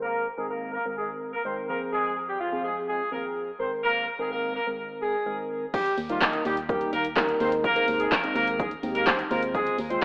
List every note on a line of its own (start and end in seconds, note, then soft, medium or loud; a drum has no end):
0.00 0.26 D#3 medium
0.00 0.26 G#3 medium
0.00 0.24 A#3 medium
0.00 0.26 C4 medium
0.00 0.26 A#4 medium
0.00 0.24 A#4 loud
0.38 0.76 D#3 medium
0.38 0.76 G#3 medium
0.38 0.49 G#3 medium
0.38 0.76 C4 medium
0.38 0.49 G#4 medium
0.38 0.76 A#4 medium
0.50 0.71 A#3 medium
0.50 0.71 A#4 medium
0.73 0.84 A#3 medium
0.73 0.84 A#4 medium
0.85 1.33 D#3 medium
0.85 1.33 G#3 medium
0.85 1.33 C4 medium
0.85 1.33 A#4 medium
0.97 1.08 G#3 medium
0.97 1.08 G#4 medium
1.33 1.44 A#3 medium
1.33 1.44 A#4 medium
1.45 1.69 D#3 medium
1.45 1.69 G#3 medium
1.45 1.56 C4 medium
1.45 1.68 C4 medium
1.45 1.69 A#4 medium
1.45 1.56 C5 medium
1.69 2.36 D#2 medium
1.69 2.36 F3 medium
1.69 1.80 A#3 medium
1.69 2.36 C4 medium
1.69 2.36 G#4 medium
1.69 1.80 A#4 medium
1.93 2.14 G#3 medium
1.93 2.14 G#4 medium
2.28 2.39 G3 medium
2.28 2.39 G4 medium
2.40 2.62 F3 medium
2.40 2.62 F4 medium
2.52 3.00 D#2 medium
2.52 3.00 F3 medium
2.52 3.00 C4 medium
2.52 3.00 G#4 medium
2.64 2.75 G#3 medium
2.64 2.75 G#4 medium
2.88 3.09 G#3 medium
2.88 3.09 G#4 medium
3.11 3.50 D#2 medium
3.11 3.50 F3 medium
3.11 3.23 A#3 medium
3.11 3.50 C4 medium
3.11 3.50 G#4 medium
3.11 3.23 A#4 medium
3.59 4.07 D#3 medium
3.59 4.07 G#3 medium
3.59 4.07 C4 medium
3.59 3.70 C4 medium
3.59 4.07 A#4 medium
3.59 3.70 C5 medium
3.83 4.05 A#3 medium
3.83 4.05 A#4 loud
4.19 4.57 D#3 medium
4.19 4.57 G#3 medium
4.19 4.30 G#3 medium
4.19 4.57 C4 medium
4.19 4.30 G#4 medium
4.19 4.57 A#4 medium
4.31 4.52 A#3 medium
4.31 4.52 A#4 medium
4.55 4.66 A#3 medium
4.55 4.66 A#4 medium
4.66 5.14 D#3 medium
4.66 5.14 G#3 medium
4.66 5.14 C4 medium
4.66 5.14 A#4 medium
5.02 5.36 G#3 medium
5.02 5.36 G#4 medium
5.26 5.64 D#3 medium
5.26 5.64 G#3 medium
5.26 5.64 C4 medium
5.26 5.64 A#4 medium
5.74 5.95 G3 medium
5.74 5.95 G4 loud
5.74 kick loud
5.74 crash loud
5.74 shaker medium
5.86 closed hi-hat medium
5.86 shaker medium
5.98 6.18 D#2 medium
5.98 open hi-hat medium
5.98 shaker medium
6.09 6.20 F3 medium
6.09 6.57 G3 medium
6.09 6.57 A#3 medium
6.09 6.57 D#4 medium
6.09 6.20 F4 medium
6.09 6.57 A#4 medium
6.09 closed hi-hat medium
6.09 shaker medium
6.21 6.43 D#3 medium
6.21 6.43 D#4 medium
6.21 kick loud
6.21 snare medium
6.21 clap loud
6.21 shaker medium
6.33 closed hi-hat medium
6.33 shaker medium
6.45 6.85 D#2 loud
6.45 6.56 G3 medium
6.45 6.56 G4 medium
6.45 open hi-hat medium
6.45 shaker medium
6.57 closed hi-hat medium
6.57 shaker medium
6.69 7.07 G3 medium
6.69 6.91 G3 medium
6.69 7.07 A#3 medium
6.69 7.07 D#4 medium
6.69 6.91 G4 medium
6.69 7.07 A#4 loud
6.69 kick loud
6.69 shaker medium
6.81 closed hi-hat soft
6.81 shaker medium
6.93 7.33 D#2 medium
6.93 7.04 A#3 medium
6.93 7.04 A#4 medium
6.93 open hi-hat medium
6.93 shaker medium
7.05 closed hi-hat medium
7.05 shaker medium
7.16 7.40 G3 loud
7.16 7.40 A#3 loud
7.16 7.39 D#4 loud
7.16 7.39 A#4 loud
7.16 kick loud
7.16 snare medium
7.16 clap loud
7.16 shaker medium
7.29 closed hi-hat medium
7.29 shaker medium
7.40 7.80 D#2 loud
7.40 7.69 G#3 medium
7.40 7.69 C4 medium
7.40 7.51 C4 medium
7.40 7.69 D#4 medium
7.40 7.69 A#4 medium
7.40 7.51 C5 medium
7.40 open hi-hat medium
7.40 shaker medium
7.52 closed hi-hat medium
7.52 shaker medium
7.64 7.86 A#3 loud
7.64 7.86 A#4 loud
7.64 kick loud
7.64 shaker medium
7.76 8.14 G#3 medium
7.76 8.14 C4 medium
7.76 8.14 D#4 medium
7.76 8.14 A#4 loud
7.76 closed hi-hat medium
7.76 shaker medium
7.88 8.08 D#2 loud
7.88 open hi-hat medium
7.88 shaker medium
8.00 8.11 G#3 medium
8.00 8.11 G#4 medium
8.00 closed hi-hat medium
8.00 shaker medium
8.12 8.33 A#3 medium
8.12 8.33 A#4 medium
8.12 kick loud
8.12 snare medium
8.12 clap loud
8.12 shaker medium
8.23 8.71 G#3 medium
8.23 8.71 C4 medium
8.23 8.71 D#4 medium
8.23 8.71 A#4 medium
8.23 closed hi-hat medium
8.23 shaker medium
8.36 8.75 D#2 loud
8.36 8.46 A#3 medium
8.36 8.46 A#4 loud
8.36 open hi-hat medium
8.36 shaker medium
8.47 closed hi-hat medium
8.47 shaker medium
8.59 8.70 G#3 medium
8.59 8.70 G#4 medium
8.59 kick loud
8.59 shaker medium
8.71 closed hi-hat soft
8.71 shaker soft
8.83 9.23 D#2 medium
8.83 9.29 G#3 medium
8.83 9.30 C4 medium
8.83 9.31 D#4 medium
8.83 9.31 G4 medium
8.83 open hi-hat medium
8.83 shaker medium
8.95 9.06 A#3 medium
8.95 9.06 A#4 medium
8.95 closed hi-hat medium
8.95 shaker medium
9.06 9.18 C4 medium
9.06 9.18 C5 medium
9.06 kick loud
9.06 snare medium
9.06 clap loud
9.06 shaker medium
9.19 closed hi-hat medium
9.19 shaker medium
9.31 9.71 D#2 loud
9.31 9.78 G#3 medium
9.31 9.42 A#3 medium
9.31 9.78 C4 medium
9.31 9.79 F4 medium
9.31 9.42 A#4 medium
9.31 9.79 C5 medium
9.31 open hi-hat medium
9.31 shaker medium
9.43 closed hi-hat medium
9.43 shaker medium
9.55 9.76 G#3 medium
9.55 9.76 G#4 loud
9.55 kick loud
9.55 shaker medium
9.67 closed hi-hat medium
9.67 shaker medium
9.78 9.98 D#2 loud
9.78 open hi-hat medium
9.78 shaker medium
9.90 10.04 G#3 medium
9.90 10.04 C4 medium
9.90 10.01 C4 medium
9.90 10.04 F4 medium
9.90 10.01 C5 medium
9.90 10.04 C5 medium
9.90 closed hi-hat medium
9.90 shaker medium